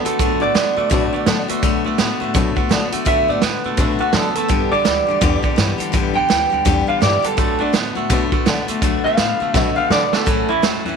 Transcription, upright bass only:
0.06 muted upright bass stroke medium
0.20 0.36 D2 medium
0.41 0.52 A2 medium
0.55 0.72 A2 medium
0.77 0.88 A2 medium
0.91 1.08 B2 medium
1.13 muted upright bass stroke medium
1.27 1.44 D3 loud
1.49 muted upright bass stroke medium
1.63 1.80 D2 medium
1.85 1.96 A2 medium
1.99 2.16 A2 medium
2.21 2.32 A2 medium
2.35 2.52 B2 medium
2.70 2.87 D3 medium
2.93 muted upright bass stroke medium
3.06 3.23 D2 medium
3.29 3.39 A2 medium
3.43 3.59 A2 medium
3.65 3.75 A2 medium
3.78 3.95 B2 medium
4.00 muted upright bass stroke medium
4.14 4.31 D3 medium
4.36 muted upright bass stroke medium
4.50 4.67 G1 loud
4.72 4.83 D2 medium
4.86 5.03 D2 medium
5.08 5.19 D2 medium
5.22 5.39 E2 medium
5.58 5.75 G2 medium
5.80 muted upright bass stroke medium
5.94 6.11 G1 medium
6.16 6.26 D2 medium
6.30 6.47 D2 medium
6.52 6.63 D2 medium
6.66 6.83 E2 medium
6.88 muted upright bass stroke medium
7.02 7.19 G2 loud
7.24 muted upright bass stroke medium
7.38 7.55 D2 loud
7.60 7.71 A2 medium
7.74 7.91 A2 medium
7.95 8.06 A2 medium
8.10 8.27 B2 medium
8.32 muted upright bass stroke medium
8.46 8.63 D3 loud
8.68 muted upright bass stroke medium
8.82 8.99 D2 medium
9.05 9.15 A2 medium
9.18 9.35 A2 medium
9.40 9.51 A2 medium
9.54 9.71 B2 medium
9.76 muted upright bass stroke medium
9.90 10.07 D3 medium
10.12 muted upright bass stroke medium
10.27 10.44 A1 medium
10.49 10.60 E2 medium
10.63 10.80 E2 medium
10.85 10.96 E2 medium

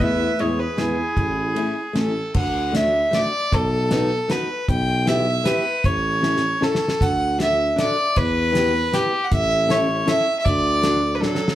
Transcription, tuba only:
0.00 0.25 E2 loud
0.40 0.65 E2 loud
0.78 1.03 E2 medium
1.17 1.68 A1 medium
1.95 2.21 A1 medium
2.35 3.12 D2 medium
3.52 4.28 B1 loud
4.68 5.43 B1 loud
5.84 6.60 A1 medium
7.01 7.76 D2 medium
8.17 8.91 E2 medium
9.32 10.06 A1 loud
10.46 11.21 D2 loud

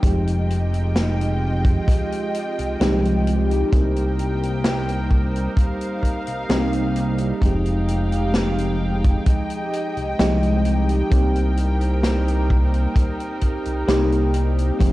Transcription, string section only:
0.04 3.69 G#3 medium
0.04 3.69 F4 medium
0.04 3.70 D#5 medium
0.04 3.69 G5 medium
3.73 11.07 D#4 medium
3.73 7.39 A#4 medium
3.73 7.39 C5 medium
3.73 5.56 G5 medium
5.58 7.41 F5 medium
7.42 11.08 G#3 medium
7.42 9.25 F5 medium
7.42 14.93 G5 medium
9.27 11.10 D#5 medium
11.11 14.93 D#4 medium
11.11 14.77 A#4 medium
11.11 14.77 C5 medium
14.81 14.93 G#3 medium
14.81 14.93 F5 medium

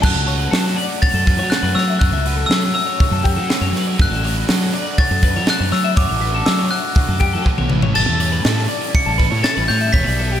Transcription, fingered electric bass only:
0.03 0.14 F#2 loud
0.15 0.47 C#2 medium
0.52 0.74 F#3 loud
1.14 1.38 F#2 loud
1.37 1.49 F#3 medium
1.63 1.74 F#2 loud
1.76 1.97 F#3 loud
2.01 2.11 F#2 loud
2.12 2.44 C#2 medium
2.49 2.71 F#3 loud
3.11 3.38 F#2 loud
3.36 3.47 F#3 medium
3.61 3.72 F#2 loud
3.73 3.94 F#3 loud
3.99 4.10 F#2 loud
4.11 4.42 A1 medium
4.50 4.70 F#3 loud
5.11 5.38 F#2 loud
5.36 5.46 F#3 medium
5.60 5.71 F#2 medium
5.72 5.93 F#3 loud
5.97 6.08 F#2 loud
6.11 6.42 A1 medium
6.48 6.68 F#3 loud
7.09 7.36 F#2 loud
7.35 7.45 F#3 medium
7.60 7.70 B1 medium
7.72 7.92 A1 loud
7.97 8.07 A1 loud
8.09 8.40 E2 medium
8.45 8.66 A2 loud
9.07 9.32 A1 loud
9.32 9.42 A2 medium
9.57 9.67 A1 loud
9.70 9.90 A2 loud
9.94 10.04 E1 loud
10.08 10.38 B1 medium

